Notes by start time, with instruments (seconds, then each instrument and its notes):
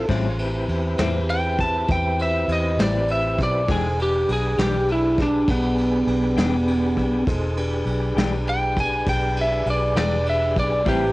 0.07 fingered electric bass A1, clean electric guitar A2 G3 C4 E4, tonewheel organ C#4 F4 G#4 C5, kick, ride
0.39 tonewheel organ C4 E4 G4 B4, ride
0.68 fingered electric bass E2, ride
0.98 fingered electric bass E2, clean electric guitar A2 G3 C4 E4, snare, ride
1.29 lead electric guitar G5, ride
1.58 lead electric guitar A5, kick, ride
1.88 fingered electric bass E2, lead electric guitar G5, kick, ride
2.19 lead electric guitar E5, ride
2.48 fingered electric bass E2, ride
2.52 lead electric guitar D#5
2.77 fingered electric bass A1, clean electric guitar A2 G3 C4 E4, snare, ride
2.82 lead electric guitar D5
3.08 lead electric guitar E5, ride
3.39 fingered electric bass B1, kick, ride
3.43 lead electric guitar D5
3.66 fingered electric bass E1, clean electric guitar E3 G#3 D4 G4, tonewheel organ D#4 G#4 A4 C5, kick, ride
3.71 lead electric guitar G#4
3.97 tonewheel organ D4 G4 G#4 B4, ride
4.02 lead electric guitar G4
4.29 fingered electric bass B1, lead electric guitar G#4, ride
4.58 fingered electric bass B1, clean electric guitar E3 G#3 D4 G4, lead electric guitar G4, snare, ride
4.89 lead electric guitar E4, ride
5.18 kick, snare, ride
5.22 lead electric guitar D4
5.48 fingered electric bass B1, lead electric guitar B3, kick, ride
5.78 ride
6.07 fingered electric bass B1, ride
6.37 fingered electric bass E1, clean electric guitar E3 G#3 D4 G4, snare, ride
6.67 ride
6.97 fingered electric bass B1, kick, ride
7.27 fingered electric bass E1, tonewheel organ D#4 G#4 A4 C5, kick, ride
7.57 tonewheel organ D4 G4 G#4 B4, ride
7.86 fingered electric bass B1, ride
8.16 fingered electric bass B1, clean electric guitar E3 G#3 D4 G4, snare, ride
8.47 lead electric guitar G5, ride
8.77 lead electric guitar G#5, kick, ride
9.07 fingered electric bass B1, lead electric guitar G5, kick, ride
9.37 ride
9.41 lead electric guitar E5
9.66 fingered electric bass B1, ride
9.70 lead electric guitar D5
9.96 fingered electric bass E1, clean electric guitar E3 G#3 D4 G4, lead electric guitar D5, snare, ride
10.26 lead electric guitar E5, ride
10.56 fingered electric bass B1, lead electric guitar D5, kick, ride
10.84 fingered electric bass A1, clean electric guitar A2 G3 C4 E4, tonewheel organ C4 G4 B4, kick, ride
10.88 tonewheel organ E4, lead electric guitar G4